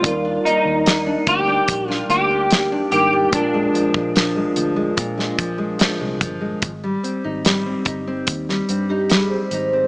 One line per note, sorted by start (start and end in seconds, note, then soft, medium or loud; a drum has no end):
0.00 0.13 C#3 medium
0.00 2.87 G3 medium
0.00 0.12 G#3 medium
0.00 0.12 C4 medium
0.00 0.48 F4 medium
0.00 2.88 D5 medium
0.00 closed hi-hat medium
0.04 0.37 D#2 medium
0.04 2.88 D#4 medium
0.04 2.89 A#4 medium
0.04 kick loud
0.25 1.06 D4 medium
0.45 0.86 A#3 medium
0.45 1.30 D#4 medium
0.45 closed hi-hat medium
0.65 1.15 D#2 medium
0.86 1.27 A#3 medium
0.86 snare loud
0.86 closed hi-hat medium
1.06 1.47 D4 medium
1.27 1.60 D2 medium
1.27 2.09 A#3 medium
1.27 1.89 G4 medium
1.27 kick medium
1.27 closed hi-hat medium
1.48 1.88 D4 medium
1.68 2.02 A#1 medium
1.68 kick medium
1.68 closed hi-hat medium
1.88 2.30 D4 medium
1.88 2.09 F4 medium
1.88 snare soft
2.09 2.75 D2 medium
2.09 2.51 A#3 medium
2.09 2.91 G4 medium
2.09 closed hi-hat medium
2.31 2.71 D4 medium
2.50 2.92 A#3 medium
2.50 snare medium
2.50 closed hi-hat medium
2.72 3.12 D4 medium
2.91 3.25 G#1 medium
2.91 3.33 G3 soft
2.91 3.54 A#3 medium
2.91 3.31 D4 soft
2.91 3.34 D#4 soft
2.91 3.34 G4 medium
2.91 3.34 A#4 medium
2.91 closed hi-hat medium
3.13 3.57 D4 medium
3.31 3.66 A#1 medium
3.31 4.95 A#2 medium
3.31 6.58 G#3 medium
3.31 6.58 D4 medium
3.31 6.18 D4 medium
3.31 6.59 F4 medium
3.31 kick loud
3.31 closed hi-hat medium
3.36 6.60 A#4 medium
3.54 3.95 G#3 medium
3.74 4.15 F3 medium
3.74 closed hi-hat medium
3.94 4.44 A#1 medium
3.94 4.36 G#3 medium
3.94 kick medium
4.16 4.55 F3 medium
4.16 snare medium
4.16 closed hi-hat medium
4.36 4.76 G#3 medium
4.56 4.90 D2 medium
4.56 5.37 F3 medium
4.56 closed hi-hat medium
4.76 5.17 G#3 medium
4.97 6.70 A#2 medium
4.97 5.31 A#2 loud
4.97 kick medium
4.97 closed hi-hat medium
5.18 5.58 G#3 medium
5.18 snare soft
5.38 5.88 A#1 medium
5.38 5.78 F3 medium
5.38 kick medium
5.38 closed hi-hat medium
5.58 5.99 G#3 medium
5.79 6.19 F3 medium
5.79 snare loud
5.79 closed hi-hat medium
6.00 6.23 C2 medium
6.00 6.40 G#3 medium
6.21 6.54 G1 medium
6.21 6.70 F3 soft
6.21 kick medium
6.21 closed hi-hat medium
6.41 6.87 G#3 medium
6.62 6.96 G#1 medium
6.62 kick loud
6.62 closed hi-hat medium
6.84 7.44 G3 medium
7.03 7.65 C4 medium
7.03 closed hi-hat medium
7.24 7.74 G#1 medium
7.24 7.86 D#4 medium
7.45 8.48 G3 medium
7.45 snare medium
7.45 closed hi-hat medium
7.66 8.06 C4 medium
7.85 8.29 G1 medium
7.85 8.90 D#4 medium
7.85 kick medium
7.85 closed hi-hat medium
8.07 8.68 C4 medium
8.27 8.61 D#2 medium
8.27 kick medium
8.27 closed hi-hat medium
8.49 9.10 G3 medium
8.49 snare soft
8.69 9.35 G2 medium
8.69 9.30 C4 medium
8.69 closed hi-hat medium
8.89 9.52 D#4 medium
8.89 9.09 G4 medium
9.10 9.88 G3 medium
9.10 9.29 G#4 medium
9.10 snare medium
9.10 closed hi-hat medium
9.30 9.72 C4 medium
9.30 9.88 C5 medium
9.51 9.84 G#1 medium
9.51 9.88 D#4 medium
9.51 closed hi-hat medium
9.73 9.88 C4 medium